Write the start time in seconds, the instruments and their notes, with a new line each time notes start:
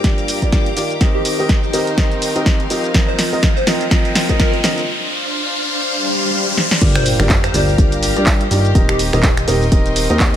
Already playing: string machine G4 F5 A#5, string section G4 D6, riser
0.04 grand piano G2 A#3 F4 G4 D5, kick, snare, closed hi-hat, shaker
0.18 closed hi-hat, shaker
0.28 open hi-hat, shaker
0.42 grand piano G2 A#3 F4 G4 D5, kick, closed hi-hat, shaker
0.52 kick, snare, closed hi-hat, shaker
0.66 closed hi-hat
0.77 grand piano D#3 A#3 F4 G4 D5, open hi-hat, shaker
0.91 closed hi-hat, shaker
1.01 grand piano D#3 C4 G4 A#4 D#5, string section D#4, string machine D#4 C5 G5, kick, snare, closed hi-hat, shaker
1.15 digital synth lead G4
1.25 open hi-hat, shaker
1.39 grand piano D#3 C4 G4 A#4 D#5, string section A#4, shaker
1.49 kick, snare, closed hi-hat, shaker
1.64 shaker
1.73 grand piano D#3 C4 G4 A#4 D#5, open hi-hat, shaker
1.87 string section F5, closed hi-hat, shaker
1.98 grand piano D#3 C4 G4 A#4 D#5, kick, snare, closed hi-hat, shaker
2.12 closed hi-hat, shaker
2.22 open hi-hat, shaker
2.36 grand piano D#3 C4 G4 A#4 D#5, closed hi-hat, shaker
2.46 kick, snare, closed hi-hat, shaker
2.60 closed hi-hat
2.70 grand piano F3 C4 G4 A#4 D#5, open hi-hat, shaker
2.84 closed hi-hat, shaker
2.94 grand piano F3 C4 F4 A#4 D#5, string machine F4 D#5 A#5, string section F4, kick, snare, closed hi-hat, shaker
3.08 digital synth lead C5, string section C5
3.19 snare, open hi-hat, shaker
3.32 grand piano F3 C4 F4 A#4 D#5, shaker
3.43 kick, snare, closed hi-hat, shaker
3.48 string section G5
3.57 digital synth lead C5, shaker
3.67 grand piano F3 C4 F4 A#4 D#5, snare, open hi-hat, shaker
3.81 closed hi-hat, shaker
3.91 grand piano F3 C4 F4 A#4 D#5, kick, snare, closed hi-hat, shaker
4.05 closed hi-hat, shaker
4.15 snare, open hi-hat, shaker
4.29 grand piano F3 C4 F4 A#4 D#5, kick, closed hi-hat, shaker
4.40 digital synth lead A#4, kick, snare, closed hi-hat, shaker
4.54 closed hi-hat
4.64 grand piano D3 C4 F4 A#4 D#5, snare, open hi-hat, shaker
4.78 closed hi-hat, shaker
4.88 string machine D4 C5 F5
5.85 swell
6.57 snare
6.71 snare
6.81 analog synth bass G1, grand piano G2 A#3 F4 G4 D5, string machine G4 F5 A#5, string section G4, kick, closed hi-hat, crash, sub drop, shaker
6.95 digital synth lead C5, finger snap, closed hi-hat
7.06 open hi-hat, shaker
7.20 analog synth bass G1, grand piano G2 A#3 F4 G4 D5, finger snap, shaker
7.29 kick, clap, closed hi-hat, shaker
7.44 digital synth lead C5, finger snap, closed hi-hat, shaker
7.54 analog synth bass G1, grand piano G2 A#3 F4 G4 D5, digital synth lead C5, open hi-hat, shaker
7.68 shaker
7.78 analog synth bass G1, grand piano G2 A#3 F4 G4 D5, kick, closed hi-hat, shaker
7.92 closed hi-hat, shaker
8.03 open hi-hat, shaker
8.16 analog synth bass G2, grand piano G2 A#3 F4 G4 D5, closed hi-hat, shaker
8.26 kick, clap, closed hi-hat, shaker
8.41 closed hi-hat
8.51 analog synth bass G2, grand piano D#3 A#3 F4 G4 D5, open hi-hat, shaker
8.65 closed hi-hat, shaker
8.75 analog synth bass D#1, grand piano D#3 C4 G4 A#4 D#5, string section D#4, string machine D#5 C6 G6, kick, closed hi-hat, shaker
8.89 digital synth lead G4, finger snap, closed hi-hat
8.99 open hi-hat, shaker
9.13 analog synth bass D#1, grand piano D#3 C4 G4 A#4 D#5, finger snap, shaker
9.23 string section A#4, kick, clap, closed hi-hat, shaker
9.37 finger snap, closed hi-hat, shaker
9.48 analog synth bass D#1, grand piano D#3 C4 G4 A#4 D#5, open hi-hat, shaker
9.62 string section F5, shaker
9.72 analog synth bass D#1, grand piano D#3 C4 G4 A#4 D#5, kick, closed hi-hat, shaker
9.86 closed hi-hat, shaker
9.96 open hi-hat, shaker
10.10 analog synth bass D#2, grand piano D#3 C4 G4 A#4 D#5, closed hi-hat, shaker
10.20 kick, clap, closed hi-hat, shaker